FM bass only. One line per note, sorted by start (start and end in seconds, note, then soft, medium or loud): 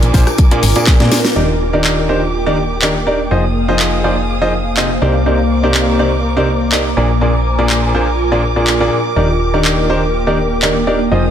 0.03 0.12 A#1 loud
0.14 0.25 A#1 medium
0.63 0.73 G#1 loud
1.00 1.09 A#2 medium
1.36 3.29 D#1 medium
3.31 5.00 F1 medium
5.02 6.95 C2 medium
6.97 8.90 A#1 medium
9.16 11.09 D#1 medium
11.12 11.31 F1 medium